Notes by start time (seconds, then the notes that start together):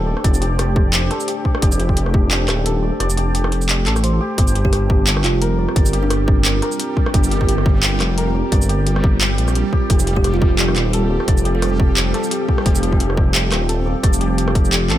Already playing: D#1 A3 D4 G4 A4 C5 G5
0.07 D5
0.17 cross-stick
0.24 F1 D5, kick, closed hi-hat
0.34 shaker
0.41 G4, closed hi-hat
0.58 G4, cross-stick, closed hi-hat
0.76 D5, kick
0.93 G4, clap, closed hi-hat
1.11 A4, cross-stick, closed hi-hat
1.20 shaker
1.28 G4, closed hi-hat
1.45 D5, kick
1.55 cross-stick
1.62 F1 G4, kick, closed hi-hat
1.72 shaker
1.79 G4, closed hi-hat
1.89 kick
1.97 G4, closed hi-hat
2.06 cross-stick
2.14 G4, kick
2.31 G5, clap, closed hi-hat
2.48 D#1 G5, cross-stick, clap, closed hi-hat
2.65 A4, closed hi-hat
2.83 D5
3.00 F1 D5, cross-stick, closed hi-hat
3.10 shaker
3.17 G4, closed hi-hat
3.34 G4, closed hi-hat
3.44 cross-stick
3.52 D5, closed hi-hat
3.62 shaker
3.69 G4, clap, closed hi-hat
3.86 A1 A4, clap, closed hi-hat
3.96 cross-stick, shaker
4.03 C5, closed hi-hat
4.21 G4
4.38 G1 G3 C4 G4, kick, closed hi-hat
4.48 shaker
4.55 G4, closed hi-hat
4.65 F4 G4, kick
4.72 G4, cross-stick, closed hi-hat
4.78 A#4
4.90 G4, kick
5.07 G5, clap, closed hi-hat
5.17 cross-stick
5.24 F1 F4 G5, clap, closed hi-hat
5.41 A#4, closed hi-hat
5.58 D5
5.69 cross-stick
5.76 G1 D5, kick, closed hi-hat
5.86 shaker
5.93 G4, closed hi-hat
6.03 D4
6.10 G4, cross-stick, closed hi-hat
6.28 D5, kick
6.45 G4, clap, closed hi-hat
6.62 A#4, cross-stick, closed hi-hat
6.72 shaker
6.79 G4, closed hi-hat
6.97 D5, kick
7.06 cross-stick
7.14 G1 G4, kick, closed hi-hat
7.24 shaker
7.31 G4, closed hi-hat
7.41 kick
7.49 G4, closed hi-hat
7.58 cross-stick
7.66 G4, kick
7.83 G5, clap, closed hi-hat
8.00 F1 G5, cross-stick, clap, closed hi-hat
8.18 A#4, closed hi-hat
8.35 D5
8.52 G1 D5, kick, cross-stick, closed hi-hat
8.62 shaker
8.69 G4, closed hi-hat
8.86 G4, closed hi-hat
8.96 cross-stick
9.04 D5, kick
9.21 G4, clap, closed hi-hat
9.38 A#1 G4, closed hi-hat
9.48 A#1, cross-stick, shaker
9.55 D5, closed hi-hat
9.73 G4, kick
9.90 F1 G4, kick, closed hi-hat
9.99 shaker
10.07 G4, closed hi-hat
10.16 G4, kick
10.24 G4 A4, cross-stick, closed hi-hat
10.34 F4
10.41 G4, kick
10.59 G5, clap, closed hi-hat
10.68 cross-stick
10.76 D#1 G5, clap, closed hi-hat
10.93 A4, closed hi-hat
11.10 D5
11.20 cross-stick
11.28 F1 D5, kick, closed hi-hat
11.37 shaker
11.45 G4, closed hi-hat
11.55 A4
11.62 G4, cross-stick, closed hi-hat
11.79 D5, kick
11.97 G4, clap, closed hi-hat
12.14 A4, cross-stick, closed hi-hat
12.24 shaker
12.31 G4, closed hi-hat
12.48 D5, kick
12.58 cross-stick
12.66 F1 G4, kick, closed hi-hat
12.75 shaker
12.83 G4, closed hi-hat
12.93 kick
13.00 G4, closed hi-hat
13.10 cross-stick
13.17 G4, kick
13.34 G5, clap, closed hi-hat
13.51 D#1 G5, cross-stick, clap, closed hi-hat
13.69 A4, closed hi-hat
13.86 D5
14.03 F1 D5, kick, cross-stick, closed hi-hat
14.13 shaker
14.20 G4, closed hi-hat
14.38 G4, closed hi-hat
14.48 cross-stick
14.55 D5, kick, closed hi-hat
14.65 shaker
14.72 G4, clap, closed hi-hat
14.90 A1 A4, clap, closed hi-hat